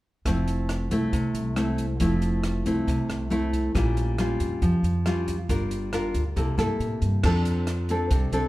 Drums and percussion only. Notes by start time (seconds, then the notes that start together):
0.25 kick, cross-stick, closed hi-hat
0.48 closed hi-hat
0.69 cross-stick, closed hi-hat
0.91 kick, closed hi-hat
1.13 kick, closed hi-hat
1.35 closed hi-hat
1.56 cross-stick, closed hi-hat
1.78 kick, closed hi-hat
2.00 kick, closed hi-hat
2.22 closed hi-hat
2.44 cross-stick, closed hi-hat
2.66 kick, closed hi-hat
2.88 kick, closed hi-hat
3.10 cross-stick, closed hi-hat
3.31 closed hi-hat
3.53 kick, closed hi-hat
3.75 kick, cross-stick, closed hi-hat
3.97 closed hi-hat
4.18 cross-stick, closed hi-hat
4.40 kick, closed hi-hat
4.62 kick, closed hi-hat
4.84 closed hi-hat
5.06 cross-stick, closed hi-hat
5.28 kick, closed hi-hat
5.49 kick, closed hi-hat
5.71 closed hi-hat
5.93 cross-stick, closed hi-hat
6.14 kick, closed hi-hat
6.36 kick, closed hi-hat
6.59 cross-stick, closed hi-hat
6.80 closed hi-hat
7.02 kick, closed hi-hat
7.24 kick, cross-stick, crash
7.45 closed hi-hat
7.67 cross-stick, closed hi-hat
7.89 closed hi-hat
8.11 kick, closed hi-hat
8.33 closed hi-hat